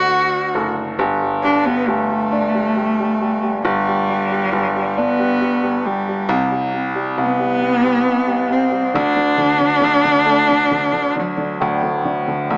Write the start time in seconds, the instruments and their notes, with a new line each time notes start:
Already playing: grand piano D2, upright piano D3 A3, cello F#4
0.55 grand piano F#1, upright piano A3
0.99 grand piano G1, upright piano G3
1.22 upright piano G3
1.44 upright piano G3, cello D4
1.66 upright piano G3, cello B3
1.87 grand piano G1, upright piano G3, cello A3
2.10 upright piano G3
2.32 upright piano D4
2.54 upright piano G3
2.76 upright piano G3
3.00 upright piano G3
3.21 upright piano G3
3.43 upright piano G3
3.62 grand piano G1, cello G3, upright piano G3
3.88 upright piano G3
4.10 upright piano G3
4.32 upright piano G3
4.53 grand piano G1, upright piano G3
4.76 upright piano G3
4.97 cello B3, upright piano D4
5.20 upright piano G3
5.41 upright piano G3
5.63 upright piano G3
5.86 cello G3, upright piano G3
6.08 upright piano G3
6.29 grand piano C2, upright piano C3
6.52 upright piano G3
6.74 upright piano C3
6.95 upright piano G3
7.17 grand piano C2, upright piano C3, cello B3
7.40 upright piano G3
7.61 upright piano C3
7.84 upright piano G3
8.06 upright piano C3
8.27 upright piano G3
8.50 upright piano C3, cello C4
8.72 upright piano G3
8.94 grand piano D2, upright piano D3, cello D4
9.16 upright piano D3
9.37 upright piano D3
9.59 upright piano D3
9.80 grand piano D2, upright piano D3
10.04 upright piano D3
10.25 upright piano A3
10.49 upright piano D3
10.71 upright piano D3
10.93 upright piano D3
11.16 upright piano D3, cello F#3
11.37 upright piano D3
11.60 grand piano D2, upright piano A2
11.83 upright piano D3
12.05 upright piano D3
12.28 upright piano D3
12.50 grand piano D2, upright piano D3, cello A3